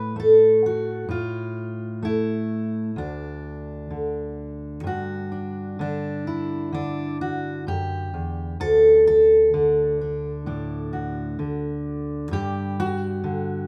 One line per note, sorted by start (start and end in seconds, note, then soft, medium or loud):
0.00 1.07 A2 medium
0.00 0.15 A3 medium
0.00 0.17 B4 medium
0.16 1.03 A3 medium
0.16 1.11 A4 medium
0.66 1.10 F#4 medium
1.09 2.95 A2 medium
1.09 2.03 F4 medium
2.02 2.90 A3 medium
2.02 2.97 E4 medium
2.96 4.83 D2 medium
2.96 4.85 D4 medium
3.90 5.78 D3 medium
4.83 7.65 G2 medium
4.83 5.79 F#4 medium
5.32 5.81 D4 soft
5.79 6.71 D3 medium
5.79 6.73 D4 medium
6.27 7.67 E4 medium
6.72 8.54 D3 medium
6.72 7.20 D4 medium
7.21 7.67 F#4 medium
7.67 8.13 F#2 medium
7.67 8.60 G4 medium
8.14 8.60 E2 medium
8.60 12.31 D2 medium
8.60 9.06 A4 loud
9.07 10.92 A4 medium
9.54 11.38 D3 medium
10.01 10.46 D4 soft
10.46 11.39 A2 medium
10.46 12.79 D4 soft
10.93 12.32 F#4 soft
11.39 13.22 D3 medium
12.31 13.67 G2 medium
12.31 13.67 G4 loud
12.80 13.67 F#4 loud
13.24 13.67 D3 medium